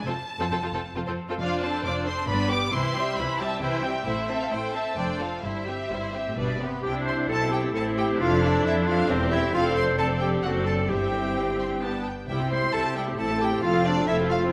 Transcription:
0.04 double bass section F1, cello section F2, viola section C4 F4, violin section A4 C5 A5
0.38 cello section F2, viola section C4 F4, violin section A4 C5
0.49 double bass section F1, cello section F2, viola section C4 F4, violin section A4 C5
0.61 cello section F2, viola section C4 F4, violin section F4 A4
0.72 double bass section F1, cello section F2, viola section C4 F4, violin section A4 C5
0.95 double bass section F1, cello section F2, viola section C4 F4, violin section F4 A4
1.06 cello section F2, viola section C4 F4, violin section A4 C5
1.28 cello section F2, viola section C4 F4, violin section F4 A4
1.39 double bass section F1, cello section F2, viola section D4 F4, violin section C5 D5 F5
1.61 viola section C4 D4, violin section A4 C5 A5
1.84 double bass section F1, cello section F2, viola section D4 F4, violin section C5 D5 D6
2.05 viola section C4 D4, violin section A4 C5 C6
2.27 double bass section G1, cello section G2, viola section B3 D4, violin section B4 D5 B5
2.49 viola section G3 B3, violin section G4 B4 D6
2.72 double bass section C2, cello section C3, viola section E3 E4, violin section E4 C5 C6
2.95 viola section G3 C4, violin section G4 E5
3.16 double bass section C2, cello section C3, viola section E3 E4, violin section E4 C5 B5
3.39 viola section G3 C4, violin section G4 E5 A5
3.61 double bass section C2, cello section C3, viola section E3 E4, violin section E4 C5 G5
3.83 viola section G3 C4, violin section G4 E5
4.05 double bass section A1, cello section A2, viola section A3 E4, violin section C5 E5
4.27 viola section C4, violin section A4 E5
4.41 violin section F5
4.50 double bass section A1, cello section A2, viola section A3 E4, violin section C5 G5
4.72 viola section C4, violin section A4 E5 A5
4.95 double bass section F1, cello section F2, viola section A3 D4, violin section C5 D5 G5
5.19 viola section C4 F4, violin section A4 C5 F5
5.42 double bass section G1, cello section G2, viola section G3 E4, violin section E4 C5 E5
5.67 viola section C4 G4, violin section G4 E5
5.89 double bass section G1, cello section G2, viola section G3 E4, violin section E4 C5
6.13 viola section C4 G4, violin section G4 E5
6.27 cello section A2
6.37 double bass section G1, cello section B2, viola section G3 D4, violin section B4 D5
6.60 cello section C3, viola section B3, violin section G4 B4
6.83 double bass section C2, cello section C3, french horn section C4 E4, viola section D4 E4, clarinet G4, violin section C5 G5
7.05 clarinet C5, violin section C6
7.29 double bass section B1, cello section B2, viola section C4 E4, clarinet A4, violin section A5
7.51 clarinet G4, violin section G5
7.74 double bass section A1, cello section A2, viola section C4 E4, french horn section C4 E4, clarinet A4, violin section C5 A5
7.97 clarinet G4, violin section G5
8.19 double bass section F1, cello section F2, french horn section C4 A4, viola section D4, clarinet F4, violin section A4 F5
8.42 clarinet D4, violin section D5
8.65 double bass section F2, cello section F3, clarinet E4, violin section A4 E5
8.87 clarinet F4, violin section F5
9.09 double bass section E1, cello section E2, clarinet C4, viola section C4 G4, french horn section C4 G4, violin section C5
9.30 clarinet E4, violin section E5
9.53 double bass section F1, cello section F2, french horn section C4 D4, viola section C4 A4, clarinet F4, violin section D5 F5
9.75 clarinet C5, violin section C6
9.98 viola section C4 A4, french horn section C4 D4, clarinet A4, violin section D5 A5
10.20 clarinet G4, violin section G5
10.43 double bass section F#1, cello section F#2, viola section C4 A4, french horn section C4 D4, clarinet F#4, violin section D5 F#5
10.66 clarinet A4, violin section A5
10.88 double bass section G1, timpani G2, cello section G2, viola section C4 G4, french horn section C4 E4, clarinet G4, violin section E5 G5
11.37 violin section G5
11.60 violin section C6
11.82 french horn section B3 D4, viola section B3 G4, violin section A5
12.06 violin section G5
12.27 double bass section C2, timpani C3, cello section C3, viola section G3 E4, french horn section C4 E4, clarinet G4, violin section E5 G5
12.40 viola section C4 G4, violin section C5
12.50 viola section G3 E4, clarinet C5, violin section E5 C6
12.62 viola section C4 G4, violin section C5
12.72 double bass section C2, cello section C3, viola section G3 E4, clarinet A4, violin section E5 A5
12.84 viola section C4 G4, violin section C5
12.96 viola section G3 E4, clarinet G4, violin section E5 G5
13.07 viola section C4 G4, violin section C5
13.18 double bass section A1, cello section A2, viola section A3 E4, french horn section C4 E4, violin section A4 A5, clarinet A4
13.29 viola section C4 A4, violin section C5
13.39 viola section A3 E4, clarinet G4, violin section A4 G5
13.52 viola section C4 A4, violin section C5
13.62 double bass section F1, cello section F2, viola section A3 A4, french horn section C4 A4, clarinet F4, violin section F5
13.75 viola section C4 F4, violin section C5
13.85 viola section A3 A4, clarinet D4, violin section D5 F5
13.97 viola section C4 F4, violin section C5
14.07 double bass section F1, cello section F2, viola section A3 A4, clarinet E4, violin section E5 F5
14.20 viola section C4 F4, violin section C5
14.30 viola section A3 A4, clarinet F4, violin section F5
14.41 viola section C4 F4, violin section C5

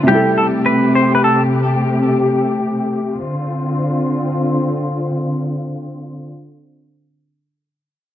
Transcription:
0.03 felt piano C3 G3
0.08 string section C3 A3 G4, felt piano E4, clean electric guitar G4
0.14 felt piano A4
0.38 clean electric guitar A4
0.66 clean electric guitar B4
0.95 clean electric guitar C5
1.15 clean electric guitar B4
1.24 clean electric guitar A4
3.18 string section D3 C4 F4

